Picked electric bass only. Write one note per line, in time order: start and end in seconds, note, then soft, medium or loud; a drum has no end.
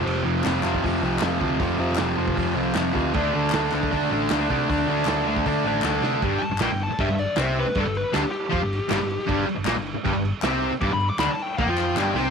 0.06 0.22 F1 loud
0.26 0.41 F1 medium
0.46 0.61 F1 loud
0.64 0.80 F1 medium
0.85 1.00 F2 medium
1.02 1.18 C2 loud
1.22 1.37 F1 medium
1.41 1.57 D2 medium
1.60 1.76 F1 loud
1.78 1.94 F1 medium
1.99 2.14 F1 loud
2.18 2.34 F1 medium
2.38 2.53 F2 loud
2.55 2.71 C2 loud
2.75 2.91 F1 medium
2.96 3.11 D2 medium
3.15 3.31 D2 loud
3.35 3.50 D2 medium
3.53 3.69 D2 loud
3.73 3.88 D2 medium
3.93 4.08 D3 medium
4.10 4.26 A1 medium
4.30 4.46 D2 medium
4.50 4.65 C3 medium
4.70 4.85 D2 loud
4.87 5.03 D2 medium
5.06 5.22 D2 loud
5.25 5.41 D2 medium
5.46 5.61 D3 medium
5.64 5.80 A1 medium
5.83 5.99 D2 medium
6.01 6.17 C3 medium
6.22 6.39 G1 loud
6.40 muted picked electric bass stroke soft
6.49 6.59 G1 medium
6.60 6.69 A#1 loud
6.71 6.88 G1 medium
6.91 muted picked electric bass stroke soft
7.00 7.08 G1 medium
7.09 7.26 G1 medium
7.37 7.64 C2 loud
7.66 muted picked electric bass stroke soft
7.76 7.84 G1 loud
7.86 8.03 G1 medium
8.15 8.23 D2 loud
8.25 muted picked electric bass stroke soft
8.52 8.61 F2 loud
8.62 8.79 G1 medium
8.90 8.99 G1 medium
9.00 9.17 G1 medium
9.29 9.46 G1 loud
9.58 9.66 G1 medium
9.67 9.76 A#1 loud
9.77 9.95 G1 medium
9.95 muted picked electric bass stroke soft
10.05 10.14 G1 medium
10.15 10.32 G1 loud
10.42 10.69 C2 medium
10.73 muted picked electric bass stroke soft
10.82 10.89 G1 loud
10.89 11.08 G1 medium
11.19 11.27 D2 medium
11.28 muted picked electric bass stroke soft
11.58 11.66 A#1 medium
11.66 11.94 F2 loud
11.95 12.13 G1 loud
12.13 12.30 C2 medium